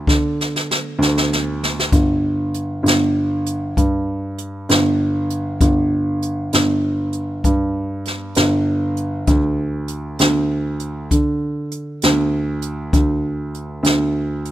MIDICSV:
0, 0, Header, 1, 3, 480
1, 0, Start_track
1, 0, Tempo, 614754
1, 1502, Time_signature, 12, 3, 24, 8
1, 4857, Tempo, 609756
1, 11386, End_track
2, 0, Start_track
2, 0, Title_t, "Grand piano"
2, 0, Program_c, 0, 0
2, 58, Note_on_c, 0, 50, 73
2, 749, Note_off_c, 0, 50, 0
2, 769, Note_on_c, 0, 38, 88
2, 1466, Note_off_c, 0, 38, 0
2, 1504, Note_on_c, 0, 31, 76
2, 2193, Note_off_c, 0, 31, 0
2, 2211, Note_on_c, 0, 31, 82
2, 2906, Note_off_c, 0, 31, 0
2, 2944, Note_on_c, 0, 43, 75
2, 3631, Note_off_c, 0, 43, 0
2, 3664, Note_on_c, 0, 31, 88
2, 4350, Note_off_c, 0, 31, 0
2, 4381, Note_on_c, 0, 31, 83
2, 5068, Note_off_c, 0, 31, 0
2, 5101, Note_on_c, 0, 31, 74
2, 5790, Note_off_c, 0, 31, 0
2, 5821, Note_on_c, 0, 43, 80
2, 6511, Note_off_c, 0, 43, 0
2, 6545, Note_on_c, 0, 31, 90
2, 7233, Note_off_c, 0, 31, 0
2, 7260, Note_on_c, 0, 38, 82
2, 7950, Note_off_c, 0, 38, 0
2, 7985, Note_on_c, 0, 38, 82
2, 8672, Note_off_c, 0, 38, 0
2, 8707, Note_on_c, 0, 50, 71
2, 9392, Note_off_c, 0, 50, 0
2, 9434, Note_on_c, 0, 38, 91
2, 10115, Note_off_c, 0, 38, 0
2, 10138, Note_on_c, 0, 38, 76
2, 10826, Note_off_c, 0, 38, 0
2, 10846, Note_on_c, 0, 38, 78
2, 11386, Note_off_c, 0, 38, 0
2, 11386, End_track
3, 0, Start_track
3, 0, Title_t, "Drums"
3, 58, Note_on_c, 9, 36, 77
3, 67, Note_on_c, 9, 38, 54
3, 136, Note_off_c, 9, 36, 0
3, 146, Note_off_c, 9, 38, 0
3, 318, Note_on_c, 9, 38, 54
3, 396, Note_off_c, 9, 38, 0
3, 436, Note_on_c, 9, 38, 52
3, 514, Note_off_c, 9, 38, 0
3, 555, Note_on_c, 9, 38, 63
3, 633, Note_off_c, 9, 38, 0
3, 798, Note_on_c, 9, 38, 64
3, 876, Note_off_c, 9, 38, 0
3, 917, Note_on_c, 9, 38, 63
3, 995, Note_off_c, 9, 38, 0
3, 1039, Note_on_c, 9, 38, 79
3, 1117, Note_off_c, 9, 38, 0
3, 1277, Note_on_c, 9, 38, 82
3, 1355, Note_off_c, 9, 38, 0
3, 1401, Note_on_c, 9, 38, 70
3, 1479, Note_off_c, 9, 38, 0
3, 1502, Note_on_c, 9, 36, 93
3, 1502, Note_on_c, 9, 42, 66
3, 1580, Note_off_c, 9, 36, 0
3, 1580, Note_off_c, 9, 42, 0
3, 1985, Note_on_c, 9, 42, 59
3, 2063, Note_off_c, 9, 42, 0
3, 2234, Note_on_c, 9, 42, 70
3, 2246, Note_on_c, 9, 38, 92
3, 2312, Note_off_c, 9, 42, 0
3, 2324, Note_off_c, 9, 38, 0
3, 2704, Note_on_c, 9, 42, 55
3, 2782, Note_off_c, 9, 42, 0
3, 2945, Note_on_c, 9, 36, 77
3, 2947, Note_on_c, 9, 42, 69
3, 3023, Note_off_c, 9, 36, 0
3, 3025, Note_off_c, 9, 42, 0
3, 3422, Note_on_c, 9, 42, 59
3, 3500, Note_off_c, 9, 42, 0
3, 3664, Note_on_c, 9, 42, 67
3, 3676, Note_on_c, 9, 38, 88
3, 3742, Note_off_c, 9, 42, 0
3, 3754, Note_off_c, 9, 38, 0
3, 4139, Note_on_c, 9, 42, 54
3, 4217, Note_off_c, 9, 42, 0
3, 4377, Note_on_c, 9, 36, 86
3, 4378, Note_on_c, 9, 42, 74
3, 4455, Note_off_c, 9, 36, 0
3, 4456, Note_off_c, 9, 42, 0
3, 4859, Note_on_c, 9, 42, 56
3, 4938, Note_off_c, 9, 42, 0
3, 5098, Note_on_c, 9, 42, 67
3, 5110, Note_on_c, 9, 38, 95
3, 5176, Note_off_c, 9, 42, 0
3, 5189, Note_off_c, 9, 38, 0
3, 5570, Note_on_c, 9, 42, 60
3, 5649, Note_off_c, 9, 42, 0
3, 5819, Note_on_c, 9, 36, 75
3, 5819, Note_on_c, 9, 42, 69
3, 5897, Note_off_c, 9, 36, 0
3, 5898, Note_off_c, 9, 42, 0
3, 6300, Note_on_c, 9, 42, 53
3, 6313, Note_on_c, 9, 38, 30
3, 6379, Note_off_c, 9, 42, 0
3, 6392, Note_off_c, 9, 38, 0
3, 6533, Note_on_c, 9, 42, 63
3, 6546, Note_on_c, 9, 38, 89
3, 6612, Note_off_c, 9, 42, 0
3, 6624, Note_off_c, 9, 38, 0
3, 7019, Note_on_c, 9, 42, 52
3, 7098, Note_off_c, 9, 42, 0
3, 7258, Note_on_c, 9, 42, 70
3, 7262, Note_on_c, 9, 36, 85
3, 7337, Note_off_c, 9, 42, 0
3, 7341, Note_off_c, 9, 36, 0
3, 7738, Note_on_c, 9, 42, 54
3, 7816, Note_off_c, 9, 42, 0
3, 7980, Note_on_c, 9, 42, 72
3, 7993, Note_on_c, 9, 38, 94
3, 8059, Note_off_c, 9, 42, 0
3, 8072, Note_off_c, 9, 38, 0
3, 8459, Note_on_c, 9, 42, 59
3, 8538, Note_off_c, 9, 42, 0
3, 8706, Note_on_c, 9, 36, 75
3, 8707, Note_on_c, 9, 42, 78
3, 8785, Note_off_c, 9, 36, 0
3, 8785, Note_off_c, 9, 42, 0
3, 9182, Note_on_c, 9, 42, 60
3, 9261, Note_off_c, 9, 42, 0
3, 9421, Note_on_c, 9, 42, 65
3, 9434, Note_on_c, 9, 38, 88
3, 9500, Note_off_c, 9, 42, 0
3, 9512, Note_off_c, 9, 38, 0
3, 9894, Note_on_c, 9, 42, 61
3, 9973, Note_off_c, 9, 42, 0
3, 10140, Note_on_c, 9, 36, 87
3, 10141, Note_on_c, 9, 42, 66
3, 10219, Note_off_c, 9, 36, 0
3, 10220, Note_off_c, 9, 42, 0
3, 10623, Note_on_c, 9, 42, 51
3, 10702, Note_off_c, 9, 42, 0
3, 10857, Note_on_c, 9, 42, 70
3, 10870, Note_on_c, 9, 38, 93
3, 10936, Note_off_c, 9, 42, 0
3, 10949, Note_off_c, 9, 38, 0
3, 11337, Note_on_c, 9, 42, 58
3, 11386, Note_off_c, 9, 42, 0
3, 11386, End_track
0, 0, End_of_file